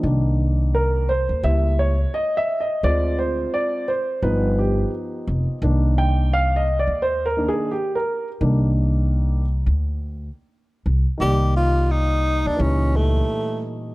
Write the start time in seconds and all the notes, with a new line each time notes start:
0.03 C2 D#3 A#3 D4
0.75 A#4
1.09 C5
1.29 D#2
1.43 C#2 G3 A#3 E4 E5
1.79 C#5
2.14 D#5
2.37 E5
2.60 D#5
2.83 D2 G#3 C4 F4 D5
3.19 C5
3.54 D5
3.88 C5
4.22 G1 F3 B3 D#4 B4
4.58 G4
5.27 F1
5.62 C2 D#3 A#3 D4
5.98 G5
6.33 F5
6.56 D#5
6.79 D5
6.87 D#2
7.02 C5
7.26 A#4
7.37 D#3 A#3 D4
7.49 G#4
7.71 G4
7.95 A#4
8.41 C2 D#3 A#3 D4
9.66 D2
10.86 C2
11.18 C2 D#3 G3 A#3 G4
11.22 D5
11.56 F4
11.91 D#4
12.46 D#2 D4
12.57 C#2 A#2 E3 G3
12.61 C#4 D#4
12.96 A3